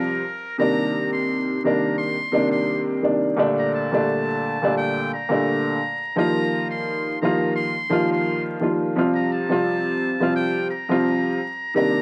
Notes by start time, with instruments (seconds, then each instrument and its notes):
Already playing: upright piano C3 F3 G3 C4 F4, muted trumpet A#4
0.58 upright piano C3 D#3 G3 A#3 D4, muted trumpet A#5
1.13 muted trumpet C6
1.63 upright piano C3 D#3 G3 A#3 D4, muted trumpet A#5
1.98 muted trumpet C6
2.32 upright piano C3 D#3 G3 A#3 D4
2.52 muted trumpet C6
3.02 upright piano C3 D#3 G3 A#3 D4
3.36 upright piano A#2 D3 G3 A3 D4
3.59 muted trumpet A#5
3.75 muted trumpet A5
3.92 upright piano A#2 D3 G3 A3 D4
4.62 upright piano A#2 D3 G3 A3 D4
4.77 muted trumpet G5
5.14 muted trumpet A#5
5.29 upright piano A#2 D3 G3 A3 D4
6.16 upright piano D#3 F3 G3 A#3 F4, muted trumpet A#5
6.71 muted trumpet C6
7.22 upright piano D#3 F3 G3 A#3 F4, muted trumpet A#5
7.56 muted trumpet C6
7.90 upright piano D#3 F3 G3 A#3 F4
8.12 muted trumpet C6
8.60 upright piano D#3 F3 G3 A#3 F4
8.95 upright piano C3 F3 G3 C4 F4
9.14 muted trumpet A#5
9.32 muted trumpet A5
9.49 upright piano C3 F3 G3 C4 F4
10.20 upright piano C3 F3 G3 C4 F4
10.36 muted trumpet G5
10.70 muted trumpet A#5
10.88 upright piano C3 F3 G3 C4 F4
11.75 upright piano C3 D#3 G3 A#3 D4, muted trumpet A#5